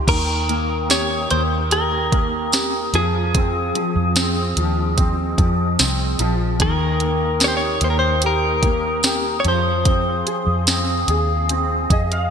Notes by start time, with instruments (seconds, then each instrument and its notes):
0.07 fingered electric bass D#2, grand piano D#3, flute section A#4 G5 D#6, clean electric guitar A#4, kick, closed hi-hat, crash
0.48 grand piano A#3, closed hi-hat
0.89 grand piano G4, clean electric guitar C#5, snare, closed hi-hat, tambourine
1.30 fingered electric bass D#2, grand piano A#3, clean electric guitar C5, closed hi-hat
1.70 grand piano G4, clean electric guitar A#4, closed hi-hat
2.12 grand piano A#3, kick, closed hi-hat
2.52 grand piano G4, snare, closed hi-hat, tambourine
2.93 fingered electric bass F2, grand piano F3, flute section G#4 F5, clean electric guitar G#4, closed hi-hat
3.35 grand piano C4, kick, closed hi-hat
3.75 grand piano F3, closed hi-hat
3.96 fingered electric bass F2
4.16 grand piano C4, snare, closed hi-hat, tambourine
4.57 fingered electric bass D#2, grand piano F3, flute section D#5, closed hi-hat
4.98 grand piano C4, kick, closed hi-hat
5.38 fingered electric bass F2, grand piano F3, kick, closed hi-hat
5.79 fingered electric bass C2, grand piano C4, snare, closed hi-hat, tambourine
6.19 fingered electric bass A#1, grand piano F3, closed hi-hat
6.60 fingered electric bass D#2, grand piano D#3, flute section A#4 G5 D#6, clean electric guitar A#4, kick, closed hi-hat
7.00 grand piano A#3, closed hi-hat
7.40 grand piano G4, clean electric guitar C#5, snare, closed hi-hat, tambourine
7.48 clean electric guitar C5
7.57 clean electric guitar C#5
7.81 fingered electric bass D#2, grand piano A#3, clean electric guitar C5, closed hi-hat
7.90 clean electric guitar A#4
7.99 clean electric guitar C5
8.22 grand piano G4, closed hi-hat
8.26 clean electric guitar A#4
8.63 grand piano A#3, kick, closed hi-hat
9.03 grand piano G4, snare, closed hi-hat, tambourine
9.40 clean electric guitar C#5
9.44 fingered electric bass F2, grand piano F3, flute section G#4 F5, closed hi-hat
9.48 clean electric guitar C5
9.85 grand piano C4, kick, closed hi-hat
10.27 grand piano G#4, closed hi-hat
10.47 fingered electric bass F2
10.67 grand piano C4, snare, closed hi-hat, tambourine
11.08 fingered electric bass D#2, grand piano G#4, closed hi-hat
11.49 grand piano C4, closed hi-hat
11.90 fingered electric bass F2, grand piano G#4 D#5, kick, closed hi-hat
12.12 grand piano F5, closed hi-hat